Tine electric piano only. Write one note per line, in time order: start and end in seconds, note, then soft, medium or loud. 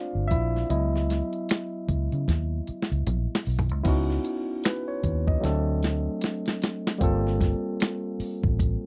0.00 0.26 A3 medium
0.00 0.26 A#3 soft
0.00 0.71 C4 medium
0.00 0.72 D4 medium
0.00 0.27 F4 medium
0.00 0.71 C5 medium
0.00 0.72 D5 medium
0.00 0.32 F5 loud
0.28 3.01 E5 medium
0.32 0.69 E4 medium
0.69 1.84 F#3 medium
0.69 1.84 B3 soft
0.69 1.84 E4 medium
0.69 1.84 D#5 medium
3.83 5.39 B3 medium
3.83 5.40 C#4 medium
3.83 5.41 D#4 medium
3.83 5.39 E4 medium
3.88 5.42 F#4 medium
4.65 4.87 B4 medium
4.88 5.25 C#5 medium
5.27 5.65 D#5 medium
5.40 6.96 F#3 medium
5.40 6.97 A3 medium
5.40 6.98 C4 medium
5.40 6.98 D4 medium
5.45 6.99 A4 medium
6.98 8.86 G3 medium
6.98 8.86 A#3 medium
6.98 8.86 C4 medium
6.98 8.86 F4 medium
7.04 8.86 A4 medium